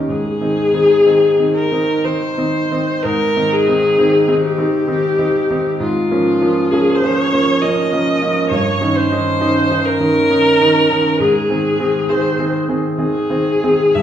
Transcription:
Already playing: grand piano D#2 D#3 C#4 D#4
0.08 grand piano G#2, viola G#4
0.41 grand piano D#3 C4 D#4
0.73 grand piano D#3 C4 D#4
1.06 grand piano D#3 C4 D#4
1.39 grand piano D#3 C4 D#4
1.55 viola A#4
1.72 grand piano D#3 C4 D#4
2.04 grand piano D#3 C4 D#4, viola C5
2.37 grand piano D#3 C4 D#4
2.71 grand piano D#3 C4 D#4
3.03 grand piano G#2, viola A#4
3.36 grand piano D#3 C4 D#4
3.52 viola G#4
3.67 grand piano D#3 C4 D#4
3.98 grand piano D#3 C4 D#4
4.28 grand piano D#3 C4 D#4
4.42 viola G4
4.58 grand piano D#3 C4 D#4
4.88 grand piano D#3 C4 D#4
5.19 grand piano D#3 C4 D#4
5.50 grand piano D#3 C4 D#4
5.80 grand piano G#2, viola F4
6.11 grand piano F3 A#3 C#4
6.41 grand piano F3 A#3 C#4
6.71 grand piano F3 A#3 C#4, viola G#4
6.95 viola C5
7.03 grand piano F3 A#3 C#4
7.16 viola C#5
7.32 grand piano F3 A#3 C#4
7.62 grand piano F3 A#3 C#4, viola D#5
7.92 grand piano F3 A#3 C#4
8.21 grand piano F3 A#3 C#4
8.50 grand piano G2, viola C#5
8.81 grand piano D#3 C#4 D#4
8.95 viola C5
9.11 grand piano D#3 C#4 D#4
9.40 grand piano D#3 C#4 D#4
9.70 grand piano D#3 C#4 D#4
9.85 viola A#4
10.00 grand piano D#3 C#4 D#4
10.30 grand piano D#3 C#4 D#4
10.60 grand piano D#3 C#4 D#4
10.89 grand piano D#3 C#4 D#4
11.20 grand piano G#2, viola G#4
11.49 grand piano D#3 C4 G#4
11.79 grand piano D#3 C4 G#4
12.09 grand piano D#3 C4 G#4, viola C5
12.39 grand piano D#3 C4 G#4
12.68 grand piano D#3 C4 G#4
12.98 grand piano D#3 C4 G#4, viola G#4
13.30 grand piano D#3 C4 G#4
13.64 grand piano D#3 C4 G#4
13.95 grand piano G2, viola E5

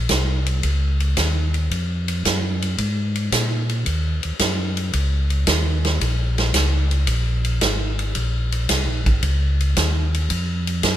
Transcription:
0.09 tonewheel organ C2, kick, snare, hi-hat pedal, ride
0.46 ride
0.63 tonewheel organ C#2, kick, ride
1.00 ride
1.17 tonewheel organ D#2, kick, snare, hi-hat pedal, ride
1.54 ride
1.71 tonewheel organ F2, kick, ride
2.08 ride
2.25 tonewheel organ F#2, kick, snare, hi-hat pedal, ride
2.62 ride
2.78 tonewheel organ G#2, kick, ride
3.16 ride
3.32 tonewheel organ A#2, kick, snare, hi-hat pedal, ride
3.69 ride
3.86 tonewheel organ D#2, kick, ride
4.23 tonewheel organ D#2, ride
4.39 tonewheel organ F#2, kick, snare, hi-hat pedal, ride
4.77 ride
4.93 tonewheel organ C#2, kick, ride
5.30 ride
5.47 tonewheel organ D#2, kick, snare, hi-hat pedal, ride
5.85 snare, ride
6.01 tonewheel organ A#1, kick, ride
6.38 snare, ride
6.54 tonewheel organ C#2, kick, snare, hi-hat pedal, ride
6.91 ride
7.07 tonewheel organ A#1, kick, ride
7.45 ride
7.61 tonewheel organ G#1, kick, snare, hi-hat pedal, ride
7.99 ride
8.15 tonewheel organ A#1, kick, ride
8.52 ride
8.69 tonewheel organ C2, kick, snare, hi-hat pedal, ride
8.85 tonewheel organ A#1
9.04 tonewheel organ G#1, kick, ride
9.23 tonewheel organ C#2, kick, ride
9.60 ride
9.77 tonewheel organ D#2, kick, snare, hi-hat pedal, ride
10.14 ride
10.30 tonewheel organ F2, kick, ride
10.67 ride
10.83 tonewheel organ F#2, kick, snare, hi-hat pedal, ride

